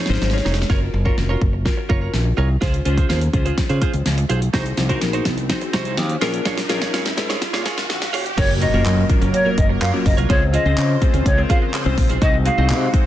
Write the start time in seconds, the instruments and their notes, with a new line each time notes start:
Already playing: clean electric guitar D#4
0.06 fingered electric bass G#1, synth keys C#4 D#4 G#4, muted clean electric guitar stroke, snare
0.10 synth keys C5, snare
0.21 fingered electric bass G#1, muted clean electric guitar stroke, snare
0.30 synth keys C#4 D#4 G#4 C#5, muted clean electric guitar stroke, snare
0.38 snare
0.45 fingered electric bass F1, clean electric guitar D#4 G#4 C#5, snare
0.54 muted clean electric guitar stroke, snare
0.62 snare
0.69 fingered electric bass F#1, synth keys C#4 F4 F#4 A#4, clean electric guitar F4 A#4 C#5, kick, snare, riser
0.81 muted clean electric guitar stroke
0.93 fingered electric bass F#1, muted clean electric guitar stroke
1.05 synth keys C#4 F4 F#4 A#4, clean electric guitar F4 A#4 C#5, kick
1.17 fingered electric bass F1, muted clean electric guitar stroke, snare
1.29 clean electric guitar F4 A#4 C#5
1.41 fingered electric bass F#1, muted clean electric guitar stroke, kick
1.53 muted clean electric guitar stroke
1.65 synth keys C#4 F4 F#4 A#4, muted clean electric guitar stroke, kick, snare
1.77 muted clean electric guitar stroke
1.89 fingered electric bass F#1, clean electric guitar F4 A#4 C#5, kick
2.01 clean electric guitar F4 A#4 C#5
2.13 fingered electric bass A#1, muted clean electric guitar stroke, snare
2.25 muted clean electric guitar stroke
2.37 fingered electric bass C2, clean electric guitar F4 A#4 C#5
2.49 muted clean electric guitar stroke
2.61 fingered electric bass C#2, synth keys C#4 F4 G#4 C5, clean electric guitar F4 G#4 C5, kick, snare, closed hi-hat
2.74 closed hi-hat
2.85 fingered electric bass C#2, synth keys C#4 F4 G#4 C5, clean electric guitar F4 G#4 C5, closed hi-hat
2.97 clean electric guitar F4 G#4 C5, kick, closed hi-hat
3.09 fingered electric bass D#2, clean electric guitar F4 G#4 C5, snare, closed hi-hat
3.21 muted clean electric guitar stroke, closed hi-hat
3.33 fingered electric bass C#2, synth keys C#4 F4 G#4 C5, muted clean electric guitar stroke, kick, closed hi-hat
3.45 clean electric guitar F4 G#4 C5, closed hi-hat
3.58 muted fingered electric bass stroke, muted clean electric guitar stroke, kick, snare, closed hi-hat
3.69 fingered electric bass C#3, clean electric guitar F4 G#4 C5, closed hi-hat
3.81 clean electric guitar F4 G#4 C5, kick, closed hi-hat
3.94 fingered electric bass C#2, muted clean electric guitar stroke, closed hi-hat
4.06 fingered electric bass C#2, muted clean electric guitar stroke, snare, closed hi-hat
4.18 muted clean electric guitar stroke, closed hi-hat
4.29 fingered electric bass B1, clean electric guitar F4 G#4 C5, closed hi-hat
4.42 muted clean electric guitar stroke, closed hi-hat
4.53 fingered electric bass C2, clean electric guitar D#4 F#4 C5, synth keys D#4 F#4 G#4 C5, kick, snare, closed hi-hat
4.66 muted clean electric guitar stroke, closed hi-hat
4.77 fingered electric bass C2, muted clean electric guitar stroke, snare, closed hi-hat
4.89 synth keys D#4 F#4 G#4 A#4, clean electric guitar D#4 F#4 C5, kick, closed hi-hat
5.01 fingered electric bass A#1, muted clean electric guitar stroke, snare, closed hi-hat
5.13 clean electric guitar D#4 F#4 C5, closed hi-hat
5.25 fingered electric bass C2, muted clean electric guitar stroke, kick, snare, closed hi-hat
5.38 muted clean electric guitar stroke, closed hi-hat
5.49 synth keys D#4 F#4 G#4 C5, muted clean electric guitar stroke, kick, snare, closed hi-hat
5.61 muted clean electric guitar stroke, closed hi-hat
5.73 fingered electric bass C2, clean electric guitar D#4 F#4 C5, kick, snare, closed hi-hat
5.85 clean electric guitar D#4 F#4 C5, closed hi-hat
5.97 fingered electric bass D#2, snare, closed hi-hat
6.09 muted clean electric guitar stroke, closed hi-hat
6.21 fingered electric bass A#1, synth keys C#4 F4 G#4 A#4, clean electric guitar F4 G#4 C#5, snare, open hi-hat
6.34 muted clean electric guitar stroke, closed hi-hat
6.45 fingered electric bass A#1, clean electric guitar F4 G#4 C#5, kick, snare, closed hi-hat
6.58 snare, closed hi-hat
6.69 fingered electric bass A#1, synth keys C#4 F4 G#4 A#4, clean electric guitar F4 G#4 C#5, snare, closed hi-hat
6.81 clean electric guitar F4 G#4 C#5, kick, snare, closed hi-hat
6.93 fingered electric bass G#1, clean electric guitar F4 G#4 C#5, snare, closed hi-hat
7.06 muted clean electric guitar stroke, snare, closed hi-hat
7.17 fingered electric bass G#2, synth keys C#4 F4 G#4 A#4, muted clean electric guitar stroke, kick, snare, closed hi-hat
7.29 clean electric guitar F4 G#4 C#5, snare, closed hi-hat
7.42 muted fingered electric bass stroke, kick, snare, closed hi-hat
7.53 fingered electric bass A#2, clean electric guitar F4 G#4 C#5, snare, closed hi-hat
7.65 clean electric guitar F4 G#4 C#5, synth keys G#5, kick, snare, closed hi-hat
7.77 fingered electric bass A#1, muted clean electric guitar stroke, snare, closed hi-hat
7.89 fingered electric bass A#1, synth keys F5, muted clean electric guitar stroke, snare, closed hi-hat
8.01 muted clean electric guitar stroke, snare, closed hi-hat
8.13 fingered electric bass F1, clean electric guitar F4 G#4 C#5, open hi-hat
8.25 muted clean electric guitar stroke, closed hi-hat
8.37 fingered electric bass F#1, analog synth pad F#3 A#3 A#4, synth arpeggio sound F#3, synth keys A#3 C#4 F4 F#4 A#4, clean electric guitar F4 A#4 C#5, flute C#5, kick, closed hi-hat, crash, impact
8.50 synth arpeggio sound F#3
8.61 synth arpeggio sound F#3, clean electric guitar F4 A#4 C#5, flute D#5, closed hi-hat
8.73 fingered electric bass F#1, synth keys A#3 C#4 F4 F#4 A#4, clean electric guitar F4 A#4 C#5
8.86 fingered electric bass F#2, clap, closed hi-hat
8.97 muted clean electric guitar stroke
9.10 synth arpeggio sound F#3, synth keys A#3 C#4 F4 F#4 A#4, kick, closed hi-hat
9.21 fingered electric bass F#1, synth arpeggio sound C#4, muted clean electric guitar stroke, closed hi-hat
9.34 flute C#5, muted clean electric guitar stroke, closed hi-hat
9.45 synth arpeggio sound F#3, synth keys A#3 C#4 F4 F#4 A#4, muted clean electric guitar stroke
9.58 fingered electric bass F#1, flute D#5, kick, closed hi-hat
9.69 synth arpeggio sound F#3, muted clean electric guitar stroke
9.81 fingered electric bass F#2, clean electric guitar F4 A#4 C#5, flute F5, clap, closed hi-hat
9.93 synth arpeggio sound F#3, synth keys A#3 C#4 F4 F#4 A#4, muted clean electric guitar stroke
10.05 fingered electric bass F#1, synth arpeggio sound F#3, flute D#5, muted clean electric guitar stroke, kick, open hi-hat
10.17 fingered electric bass C2, synth arpeggio sound F#3, clean electric guitar F4 A#4 C#5, closed hi-hat
10.29 fingered electric bass C#2, analog synth pad C#3 F4 C5, synth arpeggio sound G#3, synth keys C4 C#4 F4 G#4 C5, clean electric guitar F4 G#4 C5, flute C#5, kick, closed hi-hat
10.42 synth arpeggio sound G#3
10.53 synth arpeggio sound G#3, clean electric guitar F4 G#4 C5, flute D#5, closed hi-hat
10.65 fingered electric bass C#2, synth keys C4 C#4 F4 G#4 C5, clean electric guitar F4 G#4 C5
10.77 fingered electric bass C#3, muted clean electric guitar stroke, clap, closed hi-hat
10.89 muted clean electric guitar stroke
11.02 synth arpeggio sound G#3, synth keys C4 C#4 F4 G#4 C5, kick, closed hi-hat
11.14 fingered electric bass C#2, synth arpeggio sound C#4, muted clean electric guitar stroke, closed hi-hat
11.26 fingered electric bass C#2, flute C#5, kick, closed hi-hat
11.38 synth arpeggio sound G#3, synth keys C4 C#4 F4 G#4 A#4, muted clean electric guitar stroke
11.50 clean electric guitar F4 G#4 C5, flute F5, kick, closed hi-hat
11.62 synth arpeggio sound G#3, muted clean electric guitar stroke
11.73 clean electric guitar F4 G#4 C5, clap, closed hi-hat
11.85 fingered electric bass C2, synth arpeggio sound G#3, synth keys C4 C#4 F4 G#4 C5, muted clean electric guitar stroke
11.98 fingered electric bass A#1, synth arpeggio sound G#3, muted clean electric guitar stroke, kick, open hi-hat
12.09 fingered electric bass B1, synth arpeggio sound G#3, clean electric guitar F4 G#4 C5, closed hi-hat
12.22 fingered electric bass C2, analog synth pad C3 G#3 F#4, synth arpeggio sound G#3, synth keys C4 D#4 F#4 G#4 C5, clean electric guitar D#4 F#4 C5, flute D#5, kick, closed hi-hat
12.34 synth arpeggio sound G#3
12.45 synth arpeggio sound G#3, clean electric guitar D#4 F#4 C5, flute F5, closed hi-hat
12.57 fingered electric bass C2, synth keys C4 D#4 F#4 G#4 D#5, clean electric guitar D#4 F#4 C5
12.70 fingered electric bass C3, clap, closed hi-hat
12.82 muted clean electric guitar stroke
12.93 synth arpeggio sound G#3, synth keys C4 D#4 F#4 G#4 C5, kick, closed hi-hat